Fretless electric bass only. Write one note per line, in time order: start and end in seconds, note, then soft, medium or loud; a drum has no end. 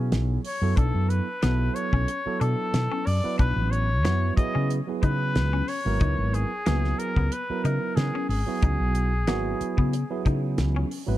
0.00 0.13 B2 medium
0.12 0.37 B1 medium
0.62 0.73 F#2 medium
0.78 0.91 B1 medium
0.94 1.19 F#2 medium
1.43 1.68 B1 medium
1.93 2.05 B1 medium
2.26 muted fretless electric bass stroke soft
2.41 2.54 B2 medium
2.74 2.87 B2 medium
3.07 3.20 F#2 medium
3.24 muted fretless electric bass stroke soft
3.40 3.53 B1 medium
3.56 4.05 A1 medium
4.05 4.30 F#2 medium
4.38 muted fretless electric bass stroke soft
4.55 4.80 C#3 medium
5.03 5.37 C#3 medium
5.36 5.61 C#2 loud
5.86 5.97 G#1 medium
6.01 6.14 C#2 medium
6.19 6.43 G#1 medium
6.68 6.92 C#2 medium
7.17 7.28 C#2 medium
7.50 muted fretless electric bass stroke soft
7.64 7.78 C#3 medium
7.97 8.10 C#3 medium
8.29 8.42 G#1 medium
8.63 8.76 C#2 medium
8.80 9.28 B1 medium
9.28 9.53 G#1 medium
9.61 muted fretless electric bass stroke soft
9.78 10.03 C#3 medium
10.26 10.59 C#3 medium
10.58 10.83 C#2 medium
11.08 11.18 G#1 medium